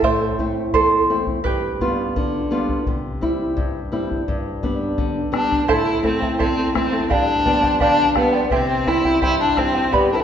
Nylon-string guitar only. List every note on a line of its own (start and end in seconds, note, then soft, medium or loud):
0.04 0.72 A2 soft
0.39 0.95 A3 soft
0.39 0.95 C4 soft
0.39 0.96 E4 soft
0.74 1.43 E2 medium
1.10 1.38 A3 soft
1.10 1.38 C4 soft
1.10 1.38 E4 soft
1.45 2.13 G2 medium
1.81 2.37 G3 soft
1.81 2.37 B3 soft
1.81 2.37 F4 medium
2.16 2.84 D3 medium
2.51 2.79 G3 soft
2.51 2.79 B3 soft
2.51 2.79 F4 medium
2.87 3.55 C3 soft
3.21 3.78 G3 soft
3.21 3.78 C4 soft
3.21 3.78 E4 medium
3.57 4.25 G2 medium
3.92 4.20 G3 soft
3.92 4.20 C4 soft
3.92 4.21 E4 soft
4.28 4.96 G2 medium
4.63 5.19 G3 soft
4.63 5.20 B3 soft
4.63 5.20 D4 soft
4.98 5.67 D3 medium
5.32 5.61 G3 soft
5.32 5.61 B3 soft
5.32 5.61 D4 soft
5.68 6.37 A2 soft
6.03 6.60 A3 soft
6.03 6.60 C4 soft
6.03 6.61 E4 soft
6.40 7.08 E2 medium
6.74 7.03 A3 soft
6.74 7.03 C4 soft
6.74 7.03 E4 soft
7.11 7.79 G2 medium
7.45 8.02 F3 soft
7.45 8.02 G3 soft
7.45 8.03 B3 soft
7.81 8.50 D3 medium
8.16 8.45 F3 soft
8.16 8.45 G3 soft
8.16 8.45 B3 soft
8.52 9.21 C3 medium
8.87 9.44 G3 soft
8.87 9.44 C4 soft
8.87 9.44 E4 soft
9.22 9.91 G2 medium
9.57 9.86 G3 soft
9.57 9.86 C4 soft
9.57 9.86 E4 soft
9.93 10.24 G2 soft